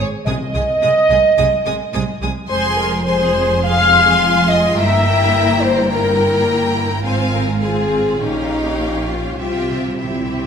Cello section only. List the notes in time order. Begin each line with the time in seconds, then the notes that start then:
0.26 C3
0.54 C3
0.81 C3
1.09 C3
1.37 C3
1.66 C3
1.93 C3
2.21 C3
2.49 F2
4.77 G2
7.05 G#2
8.20 A#2
9.40 C3